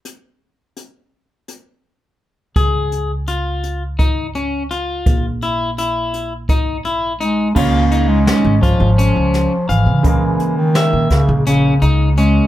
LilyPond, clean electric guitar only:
\new Staff \with { instrumentName = "Clean electric guitar" } { \time 7/8 \key cis \dorian \tempo 4 = 84 r2. r8 | gis'4 eis'4 dis'8 cis'8 eis'8~ | eis'8 e'8 e'4 dis'8 e'8 dis'8 | eis'8 dis'8 cis'8 eis'8 cis'4 eis''8~ |
eis''8 r8 e''4 cis'8 dis'8 cis'8 | }